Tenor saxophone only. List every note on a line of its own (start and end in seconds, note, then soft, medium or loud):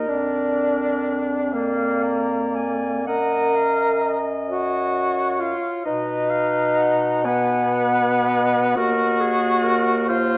0.08 1.55 D4 soft
1.53 3.07 A#3 medium
3.07 4.19 A#4 medium
4.49 5.41 F#4 medium
5.39 5.85 F4 medium
5.86 7.27 D#4 medium
7.25 8.77 B3 medium
8.76 10.08 F#4 medium
10.09 10.38 F4 medium